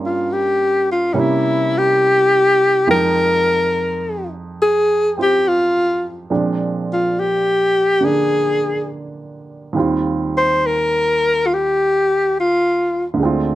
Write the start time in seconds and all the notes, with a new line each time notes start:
Already playing: G2 G3 A#3 C#4 F4
0.06 F4
0.32 G4
0.92 F4
1.14 C3 G3 A#3 C#4 E4
1.19 E4
1.78 G4
2.87 F2 F3 G#3 D#4 A#4 G5
4.62 G#4
5.17 C4 F4 G4 C5
5.22 G4
5.48 F4
6.30 A#2 F3 G#3 C4 D4
6.93 F4
7.19 G4
8.01 D3 A#3 D4
8.05 G#4
9.73 D#2 D#3 G3 C4
9.78 F4
10.37 C5
10.66 A#4
11.46 F4
11.54 G4
12.40 F4
13.14 D2 D3
13.20 G#3 C4
13.25 F4